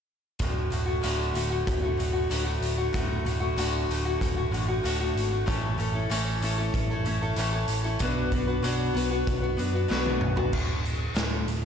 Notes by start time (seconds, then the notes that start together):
0.39 D1 D2 A2 D3 A3 F#4, kick, closed hi-hat
0.70 D1 A2 D3 A3 F#4, closed hi-hat
0.86 D3 A3 F#4
1.01 D1 D2 A2 D3 A3 F#4, closed hi-hat
1.34 D1 A2 D3 A3 F#4, closed hi-hat
1.50 D3 A3 F#4
1.67 D1, kick, closed hi-hat
1.82 D3 A3 F#4
1.97 D1 A2 D3 A3 F#4, closed hi-hat
2.13 D3 A3 F#4
2.30 D1 D2 A2 D3 A3 F#4, closed hi-hat
2.44 D3 A3 F#4
2.61 D1, closed hi-hat
2.78 D3 A3 F#4
2.93 D1 D2 A2 D3 A3 F#4, kick, closed hi-hat
3.25 D1 A2 D3 A3 F#4, closed hi-hat
3.40 D3 A3 F#4
3.56 D1 D2 A2 D3 A3 F#4, closed hi-hat
3.89 D1 A2 D3 A3 F#4, closed hi-hat
4.05 D3 A3 F#4
4.21 D1, kick, closed hi-hat
4.36 D3 A3 F#4
4.51 A1 A2 D3 A3 F#4, closed hi-hat
4.68 D3 A3 F#4
4.83 D1 D2 A2 D3 A3 F#4, closed hi-hat
5.00 D3 A3 F#4
5.15 G#1, closed hi-hat
5.30 D3 A3 F#4
5.46 A1 A2 E3 A3 C#4 E4 A4, kick, closed hi-hat
5.78 A1 A3 C#4 E4 A4, closed hi-hat
5.94 A3 C#4 E4 A4
6.09 A1 A2 E3 A3 C#4 E4 A4, closed hi-hat
6.41 A1 A3 C#4 E4 A4, closed hi-hat
6.58 A3 C#4 E4 A4
6.74 A1, kick, closed hi-hat
6.90 A3 C#4 E4 A4
7.04 A1 A3 C#4 E4 A4, closed hi-hat
7.22 A3 C#4 E4 A4
7.36 A1 A2 E3 A3 C#4 E4 A4, closed hi-hat
7.53 A3 C#4 E4 A4
7.68 A1, closed hi-hat
7.84 A3 C#4 E4 A4
7.99 B1 B2 F#3 B3 D4 F#4, kick, closed hi-hat
8.03 B4
8.32 B1 B3 D4 F#4 B4, kick, closed hi-hat
8.47 B3 D4 F#4 B4
8.62 B1 B2 F#3 B3 D4 F#4 B4, closed hi-hat
8.95 B1 B3 D4 F#4 B4, closed hi-hat
9.10 B3 D4 F#4 B4
9.27 B1, kick, closed hi-hat
9.42 B3 D4 F#4 B4
9.57 F#2 B3 D4 F#4 B4, closed hi-hat
9.73 B3 D4 F#4 B4
9.88 B1 B2 F#3 B3 D4 F#4 B4, snare
10.05 B3 D4 F#4 B4, high tom
10.21 B1, mid tom
10.36 B3 D4 F#4 B4, floor tom
10.52 D1 D2 A2 D3, kick, crash
10.84 D2 A2, closed hi-hat
11.14 D1 D2 A2 D3, snare, closed hi-hat
11.46 D1 D2 A2, closed hi-hat